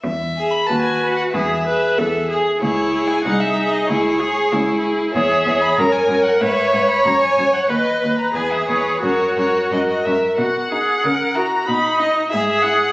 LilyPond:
<<
  \new Staff \with { instrumentName = "Violin" } { \time 2/4 \key e \major \tempo 4 = 93 e''8. b''16 a''16 gis''8 fis''16 | e''4. r8 | cis''8. gis''16 fis''16 e''8 dis''16 | cis''4. r8 |
\key b \major e''8. b''16 ais''16 gis''8 fis''16 | e''8. b''16 ais''16 gis''8 fis''16 | dis''8. ais''16 gis''16 e''16 cis''8 | cis''8 cis''8 dis''16 dis''16 e''8 |
fis''4. ais''8 | b''8 dis''8 e''16 e''16 fis''8 | }
  \new Staff \with { instrumentName = "Violin" } { \time 2/4 \key e \major r8 gis'8 b'8 b'8 | r8 gis'4 gis'8 | gis'8 gis'8 gis'8 gis'8 | gis'8 gis'4 gis'8 |
\key b \major cis''8 cis''8 cis''8 cis''8 | b'8 b'8 cis''8 cis''8 | b'8 b'8 b'8 b'8 | ais'8 ais'8 ais'8 ais'8 |
r8 dis'8 r8 e'8 | r8 dis'8 r8 e'8 | }
  \new Staff \with { instrumentName = "Viola" } { \time 2/4 \key e \major r4 fis'4 | gis'8 b'8 a'8 gis'8 | e'4 dis'4 | e'8 gis'8 e'4 |
\key b \major gis'4 ais'4 | cis''2 | b'4 gis'4 | fis'4. r8 |
fis'8 gis'8 ais'8 fis'8 | dis'4 gis'4 | }
  \new Staff \with { instrumentName = "Cello" } { \clef bass \time 2/4 \key e \major e,4 dis,4 | e,4 e,4 | cis,4 bis,,4 | cis,4 cis,4 |
\key b \major e,8 e,8 fis,8 fis,8 | gis,8 gis,8 fis,8 fis,8 | dis,8 dis,8 e,8 e,8 | fis,8 fis,8 fis,8 fis,8 |
b,4 cis4 | b,4 gis,4 | }
>>